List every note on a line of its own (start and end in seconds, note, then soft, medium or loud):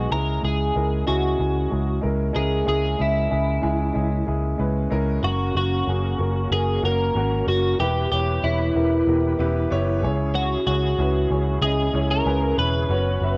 0.00 0.10 G#3 medium
0.00 0.14 B3 medium
0.00 0.14 D#4 medium
0.00 0.12 F#4 medium
0.00 0.14 F#4 medium
0.00 0.12 G#4 loud
0.10 0.38 C#2 medium
0.10 1.03 C#3 medium
0.10 0.36 G#3 medium
0.10 0.36 C#4 medium
0.10 0.36 E4 medium
0.10 0.37 G#4 medium
0.10 0.44 A#4 loud
0.42 0.70 C#2 medium
0.42 0.68 G#3 medium
0.42 0.68 C#4 medium
0.42 0.69 E4 medium
0.42 0.69 G#4 medium
0.42 1.07 G#4 medium
0.75 1.02 C#2 medium
0.75 1.00 G#3 medium
0.75 1.01 C#4 medium
0.75 1.01 E4 medium
0.75 1.01 A#4 medium
1.06 1.34 C#2 medium
1.06 1.32 G#3 medium
1.06 1.32 C#4 medium
1.06 1.33 E4 medium
1.06 1.99 F#4 medium
1.06 1.33 G#4 medium
1.38 1.66 C#2 medium
1.38 1.64 G#3 medium
1.38 1.64 C#4 medium
1.38 1.64 E4 medium
1.38 1.65 G#4 medium
1.70 1.98 C#2 medium
1.70 1.96 G#3 medium
1.70 1.96 C#4 medium
1.70 1.96 E4 medium
1.70 1.97 G#4 medium
2.01 2.30 C#2 medium
2.01 2.27 G#3 medium
2.01 2.28 C#4 medium
2.01 2.28 E4 medium
2.01 2.28 A#4 medium
2.33 2.62 C#2 medium
2.33 2.59 G#3 medium
2.33 2.60 C#4 medium
2.33 2.60 E4 medium
2.33 2.67 G#4 medium
2.33 2.60 A#4 medium
2.65 2.94 C#2 medium
2.65 3.59 C#3 medium
2.65 2.91 G#3 medium
2.65 2.92 C#4 medium
2.65 2.92 E4 medium
2.65 2.92 G#4 medium
2.65 3.01 G#4 medium
2.98 3.26 C#2 medium
2.98 3.24 G#3 medium
2.98 3.24 C#4 medium
2.98 3.24 E4 medium
2.98 4.24 E4 medium
2.98 3.25 G#4 medium
3.30 3.58 C#2 medium
3.30 3.56 G#3 medium
3.30 3.56 C#4 medium
3.30 3.56 E4 medium
3.30 3.56 G#4 medium
3.61 3.90 C#2 medium
3.61 3.88 G#3 medium
3.61 3.88 C#4 medium
3.61 3.88 E4 medium
3.61 3.88 G#4 medium
3.93 4.22 C#2 medium
3.93 4.19 G#3 medium
3.93 4.20 C#4 medium
3.93 4.20 E4 medium
3.93 4.20 G#4 medium
4.26 4.54 C#2 medium
4.26 4.52 G#3 medium
4.26 4.52 C#4 medium
4.26 4.52 E4 medium
4.26 4.53 G#4 medium
4.58 4.86 C#2 medium
4.58 4.84 G#3 medium
4.58 4.84 C#4 medium
4.58 4.84 E4 medium
4.58 4.84 B4 medium
4.90 5.18 C#2 medium
4.90 5.16 G#3 medium
4.90 5.16 C#4 medium
4.90 5.16 E4 medium
4.90 5.17 A#4 loud
5.22 5.49 F#1 medium
5.22 5.48 A#3 medium
5.22 7.76 A#3 medium
5.22 7.76 C#4 medium
5.22 5.48 C#4 medium
5.22 7.76 F#4 medium
5.22 5.48 F#4 medium
5.22 5.56 F#4 medium
5.22 5.48 A#4 medium
5.54 5.81 F#1 medium
5.54 5.80 A#3 medium
5.54 5.80 C#4 medium
5.54 5.80 F#4 medium
5.54 6.52 F#4 medium
5.54 5.81 A#4 medium
5.87 6.13 F#1 medium
5.87 6.12 A#3 medium
5.87 6.12 C#4 medium
5.87 6.13 F#4 medium
5.87 6.13 G#4 medium
6.18 6.45 F#1 medium
6.18 6.44 A#3 medium
6.18 6.44 C#4 medium
6.18 6.44 F#4 medium
6.18 6.45 A#4 medium
6.51 6.77 F#1 medium
6.51 6.76 A#3 medium
6.51 6.76 C#4 medium
6.51 6.76 F#4 medium
6.51 6.85 G#4 medium
6.51 6.77 A#4 medium
6.82 7.09 F#1 medium
6.82 7.08 A#3 medium
6.82 7.08 C#4 medium
6.82 7.08 F#4 medium
6.82 7.09 A#4 medium
6.82 7.48 A#4 medium
7.15 7.41 G#1 medium
7.15 7.40 A#3 medium
7.15 7.40 C#4 medium
7.15 7.40 F#4 medium
7.15 7.41 A#4 medium
7.47 7.73 F#1 medium
7.47 7.72 A#3 medium
7.47 7.72 C#4 medium
7.47 7.73 F#4 medium
7.47 7.80 F#4 medium
7.47 7.73 A#4 medium
7.79 8.06 E1 loud
7.79 10.01 E3 medium
7.79 8.71 E3 medium
7.79 8.04 B3 medium
7.79 12.86 E4 medium
7.79 8.04 E4 medium
7.79 10.00 G4 soft
7.79 8.10 G4 medium
7.79 8.05 G4 medium
7.79 10.01 B4 medium
7.79 8.05 B4 medium
8.11 8.38 E1 medium
8.11 8.36 B3 medium
8.11 8.36 E4 medium
8.11 8.44 G4 medium
8.11 8.37 G4 medium
8.11 8.37 C#5 medium
8.43 8.70 E1 medium
8.43 8.68 B3 medium
8.43 8.68 E4 medium
8.43 9.99 E4 medium
8.43 8.69 G4 medium
8.43 8.69 C#5 medium
8.75 9.01 E1 medium
8.75 9.00 B3 medium
8.75 9.00 E4 medium
8.75 9.00 G4 medium
8.75 9.00 A#4 medium
9.07 9.33 E1 medium
9.07 9.32 B3 medium
9.07 9.32 E4 medium
9.07 9.32 G4 medium
9.07 9.33 A#4 medium
9.39 9.65 E1 medium
9.39 9.64 B3 loud
9.39 9.64 E4 medium
9.39 9.64 G4 medium
9.39 9.65 B4 loud
9.70 10.05 F#1 medium
9.70 9.95 B3 loud
9.70 9.96 E4 medium
9.70 9.96 G4 medium
9.70 9.96 C#5 loud
10.02 10.55 C#2 medium
10.02 12.87 C#3 medium
10.02 10.95 C#3 medium
10.02 13.37 C#4 medium
10.02 10.54 C#4 medium
10.02 10.54 E4 medium
10.02 12.87 G#4 medium
10.02 10.54 G#4 medium
10.02 10.54 C#5 loud
10.35 10.66 F#4 medium
10.66 10.93 C#2 medium
10.66 10.91 C#4 medium
10.66 10.92 E4 medium
10.66 11.59 F#4 medium
10.66 10.92 G#4 medium
10.66 10.92 C#5 medium
10.98 11.25 C#2 loud
10.98 11.23 C#4 medium
10.98 11.24 E4 medium
10.98 11.24 G#4 medium
10.98 11.24 B4 medium
11.30 11.57 C#2 medium
11.30 11.55 C#4 medium
11.30 11.56 E4 medium
11.30 11.56 G#4 medium
11.30 11.56 C#5 medium
11.62 11.88 C#2 medium
11.62 11.87 C#4 medium
11.62 11.87 E4 medium
11.62 12.10 G#4 medium
11.62 11.88 G#4 medium
11.62 11.88 D#5 medium
11.93 12.20 C#2 medium
11.93 12.19 C#4 medium
11.93 12.19 E4 medium
11.93 12.19 G#4 medium
11.93 12.20 C#5 medium
12.11 12.58 A#4 loud
12.25 12.52 C#2 medium
12.25 12.51 C#4 medium
12.25 12.51 E4 medium
12.25 12.51 G#4 medium
12.25 12.51 B4 loud
12.57 12.84 E1 medium
12.57 12.83 C#4 medium
12.57 12.83 E4 medium
12.57 12.83 G#4 medium
12.57 13.37 B4 medium
12.57 12.83 C#5 medium
12.89 13.16 F#1 loud
12.89 13.37 B3 medium
12.89 13.15 C#4 medium
12.89 13.37 F#4 medium
12.89 13.15 F#4 medium
12.89 13.15 B4 medium
12.89 13.15 C#5 medium
13.21 13.37 F#1 medium
13.21 13.37 C#4 medium
13.21 13.37 F#4 medium
13.21 13.37 B4 medium
13.21 13.37 E5 medium